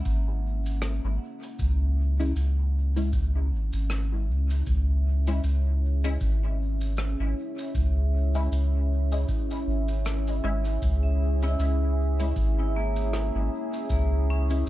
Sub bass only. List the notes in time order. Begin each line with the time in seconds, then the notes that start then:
0.05 G#1
1.04 G#1
1.59 C#2
2.36 C#2
3.51 G#1
3.73 G#1
4.28 C#2
4.67 C#2
5.44 C#2
6.21 G#1
7.20 G#1
7.75 C#2
8.51 C#2
9.67 G#1
10.44 G#1
10.82 C#2
11.59 C#2
12.36 G#1
13.35 G#1
13.90 C#2